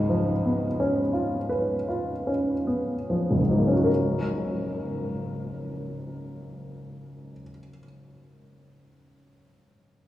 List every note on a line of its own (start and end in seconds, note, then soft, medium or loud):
0.00 3.39 C#2 soft
0.00 0.31 G#2 soft
0.00 2.29 D#5 medium
0.09 0.65 F3 soft
0.45 1.01 B3 soft
0.80 1.38 C#4 soft
1.13 1.73 F4 soft
1.49 2.12 B4 soft
1.88 2.53 F4 soft
2.27 2.94 C#4 soft
2.67 3.36 B3 soft
3.10 3.73 F3 soft
3.31 7.32 F#1 soft
3.40 7.41 C#2 soft
3.49 3.86 G#2 soft
3.49 7.50 F#3 soft
3.58 7.59 A#3 soft
3.68 7.69 C#4 soft
3.76 7.77 F#4 soft
3.84 7.85 A#4 soft